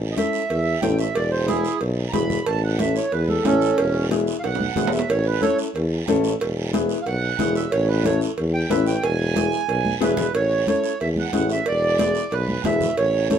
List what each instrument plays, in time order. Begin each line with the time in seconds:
Already playing: tuba A1
0.12 accordion D#5
0.17 upright piano C#4 E4 A4, accordion E5, cowbell, high conga, short guiro
0.33 short guiro
0.49 tuba E2, cowbell, long guiro
0.82 tuba A1, upright piano C#4 E4 A4, accordion G5, cowbell, high conga, low timbale, short guiro
0.99 accordion E5, short guiro
1.15 tuba E1, accordion D5, cowbell, long guiro
1.31 accordion C5
1.46 upright piano B3 E4 G#4, accordion E4 G#4, cowbell, high conga, short guiro
1.65 short guiro
1.81 tuba B1, cowbell, long guiro
2.09 accordion A#5
2.13 tuba E1, upright piano B3 E4 G#4, accordion B5, cowbell, high conga, low conga, short guiro
2.30 low conga, short guiro
2.46 tuba A1, accordion A5, cowbell, long guiro
2.64 accordion F#5
2.79 upright piano C#4 E4 A4, accordion E5, cowbell, high conga, short guiro
2.96 accordion C#5, short guiro
3.12 tuba E2, accordion B4, cowbell, long guiro
3.28 accordion A4, high conga
3.45 tuba A1, accordion C#4 A4, upright piano C#4 E4 A4, cowbell, high conga, low timbale, short guiro
3.61 short guiro
3.78 tuba E1, cowbell, long guiro
4.10 upright piano B3 E4 G#4, cowbell, high conga, short guiro
4.27 short guiro
4.39 tuba B1, accordion F5
4.44 accordion F#5, cowbell, high timbale, long guiro
4.55 high timbale
4.60 high conga
4.76 tuba E1, upright piano B3 E4 G#4, cowbell, high conga, low conga, short guiro
4.87 low timbale
4.92 accordion E5, short guiro
4.99 low timbale
5.09 tuba A1, accordion C#5, cowbell, long guiro
5.26 accordion B4
5.42 upright piano C#4 E4 A4, accordion A4 C#5, cowbell, high conga, short guiro
5.59 short guiro
5.75 tuba E2, cowbell, long guiro
6.08 tuba A1, upright piano C#4 E4 A4, cowbell, high conga, short guiro
6.24 short guiro
6.40 tuba E1, cowbell, long guiro
6.73 upright piano B3 E4 G#4, cowbell, high conga, short guiro
6.89 short guiro
7.02 tuba B1, accordion F5, long guiro
7.07 accordion F#5, cowbell
7.39 tuba E1, upright piano B3 E4 G#4, cowbell, high conga, low conga, short guiro
7.55 accordion E5, short guiro
7.71 tuba A1, accordion C#5, cowbell, long guiro
7.88 accordion B4
8.04 upright piano C#4 E4 A4, accordion C#5, cowbell, high conga, short guiro
8.21 short guiro
8.38 tuba E2, cowbell, long guiro
8.54 accordion G5
8.70 tuba A1, upright piano C#4 E4 B4, accordion E5, cowbell, high conga, low timbale, short guiro
8.87 accordion G5, short guiro
9.03 tuba E1, accordion G#5, cowbell, long guiro
9.35 upright piano B3 E4 G#4, cowbell, high conga, short guiro
9.52 short guiro
9.69 tuba B1, cowbell, long guiro
9.85 high conga
10.00 tuba E1, upright piano B3 E4 G#4, accordion B4, cowbell, high conga, low timbale, short guiro
10.17 low conga, short guiro
10.34 tuba A1, accordion C#5, cowbell, long guiro
10.67 upright piano C#4 E4 A4, accordion C#5, cowbell, high conga, short guiro
10.84 short guiro
11.00 tuba E2, accordion E5, cowbell, long guiro
11.16 accordion F#5, high conga
11.33 tuba A1, upright piano C#4 E4 G#4, cowbell, high conga, short guiro
11.50 accordion E5, short guiro
11.66 tuba E1, accordion D5, cowbell, long guiro
11.98 upright piano B3 E4 G#4, cowbell, high conga, short guiro
12.15 short guiro
12.31 tuba B1, accordion B4, cowbell, long guiro
12.48 high conga
12.64 tuba E1, upright piano B3 E4 G#4, accordion E5, cowbell, high conga, low conga, low timbale, short guiro
12.80 low conga, short guiro
12.97 tuba A1, accordion C#5, cowbell, long guiro
13.30 upright piano C#4 E4 A4, accordion C#5, cowbell, high conga, short guiro